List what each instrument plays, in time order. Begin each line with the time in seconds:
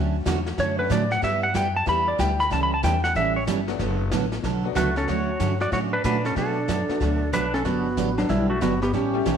Already playing: upright bass D2, steel-string acoustic guitar D3 F#3 A3 C#4 F#4
0.25 upright bass E2, steel-string acoustic guitar D3 F#3 A3 C#4 F#4, kick, snare, hi-hat pedal
0.46 snare
0.58 upright bass F#2, steel-string acoustic guitar D3 F#3 A3 C#4 F#4, electric slide guitar C#5, brush sweep, kick, snare
0.78 honky-tonk piano F#3 A3 C#4 D4 F#4, electric slide guitar B4
0.90 upright bass A2, steel-string acoustic guitar D3 F#3 A3 C#4 F#4, electric slide guitar D5, kick, snare, hi-hat pedal
1.11 electric slide guitar F#5, snare
1.22 upright bass G2, steel-string acoustic guitar G3 B3 E4 G4, electric slide guitar E5, brush sweep, kick, snare
1.43 electric slide guitar F#5
1.54 upright bass F#2, steel-string acoustic guitar G3 B3 E4 G4, electric slide guitar G5, kick, snare, hi-hat pedal
1.76 electric slide guitar A5
1.86 upright bass E2, steel-string acoustic guitar G3 B3 E4 G4, honky-tonk piano G3 B3 D4 E4 G4, electric slide guitar B5, brush sweep, kick, snare
2.08 electric slide guitar D5
2.18 upright bass D2, steel-string acoustic guitar G3 B3 E4 G4, electric slide guitar G5, kick, snare, hi-hat pedal
2.40 electric slide guitar B5, snare
2.50 upright bass C#2, steel-string acoustic guitar E3 G3 C#4 E4 A4, electric slide guitar A5, brush sweep, kick, snare
2.63 electric slide guitar B5
2.74 electric slide guitar A5
2.83 upright bass E2, steel-string acoustic guitar E3 G3 C#4 E4 A4, electric slide guitar G5, kick, snare, hi-hat pedal
3.04 electric slide guitar F#5, snare
3.15 upright bass A1, steel-string acoustic guitar E3 G3 C#4 E4 A4, electric slide guitar E5, brush sweep, kick, snare
3.36 electric slide guitar C#5
3.47 upright bass G1, steel-string acoustic guitar E3 G3 C#4 E4 A4, kick, snare, hi-hat pedal
3.67 honky-tonk piano F#3 A3 B3 D4 F#4, snare
3.79 upright bass F#1, steel-string acoustic guitar D3 F#3 B3 F#4 A4, brush sweep, kick, snare
4.11 upright bass A1, steel-string acoustic guitar D3 F#3 B3 F#4 A4, kick, snare, hi-hat pedal
4.32 snare
4.43 upright bass B1, steel-string acoustic guitar D3 F#3 B3 F#4 A4, brush sweep, kick, snare
4.64 honky-tonk piano F#3 A3 B3 D4 F#4
4.75 upright bass C#2, steel-string acoustic guitar D3 F#3 B3 F#4 A4, electric slide guitar A3 F#4, kick, snare, hi-hat pedal
4.96 electric slide guitar C#4 A4, snare
5.08 upright bass D2, steel-string acoustic guitar D3 F#3 A3 C#4 F#4, honky-tonk piano F#3 A3 C#4 D4 F#4, electric slide guitar F#4 C#5, brush sweep, kick, snare
5.40 upright bass G2, steel-string acoustic guitar D3 F#3 A3 C#4 F#4, kick, snare, hi-hat pedal
5.60 electric slide guitar F#4 D5, snare
5.72 upright bass A2, steel-string acoustic guitar D3 F#3 A3 C#4 F#4, electric slide guitar F#4 C#5, brush sweep, kick, snare
5.93 electric slide guitar D4 B4
6.04 upright bass A#2, steel-string acoustic guitar D3 F#3 A3 C#4 F#4, electric slide guitar D4 B4, kick, snare, hi-hat pedal
6.25 electric slide guitar C#4 A4, snare
6.36 steel-string acoustic guitar B2 F#3 A3 D4 F#4, upright bass B2, electric slide guitar D4 A4, brush sweep, kick, snare
6.68 upright bass F#2, steel-string acoustic guitar B2 F#3 A3 D4 F#4, kick, snare, hi-hat pedal
6.89 honky-tonk piano F#3 A3 B3 D4 F#4, muted upright bass stroke, snare
7.00 upright bass D2, steel-string acoustic guitar B2 F#3 A3 D4 F#4, brush sweep, kick, snare
7.33 upright bass B1, steel-string acoustic guitar B2 F#3 A3 D4 F#4, electric slide guitar D4 B4, kick, snare, hi-hat pedal
7.54 electric slide guitar C#4 A4, snare
7.65 upright bass G1, steel-string acoustic guitar D3 F#3 B3 D4 G4, electric slide guitar B3 F#4, brush sweep, kick, snare
7.97 upright bass A1, steel-string acoustic guitar D3 F#3 B3 D4 G4, kick, snare, hi-hat pedal
8.18 honky-tonk piano F#3 G3 B3 D4 F#4, electric slide guitar F#3 D4, snare
8.29 upright bass B1, steel-string acoustic guitar D3 F#3 B3 D4 G4, electric slide guitar G3 E4, brush sweep, kick, snare
8.50 electric slide guitar A3 F#4
8.61 upright bass G1, steel-string acoustic guitar D3 F#3 B3 D4 G4, electric slide guitar B3 F#4, kick, snare, hi-hat pedal
8.82 electric slide guitar B3 G4, snare
8.93 upright bass A1, steel-string acoustic guitar E3 G3 C#4 E4 A4, electric slide guitar C#4 G4, brush sweep, kick, snare
9.14 honky-tonk piano G3 A3 C#4 E4 G4
9.25 upright bass B1, steel-string acoustic guitar E3 G3 C#4 E4 A4, kick, snare, hi-hat pedal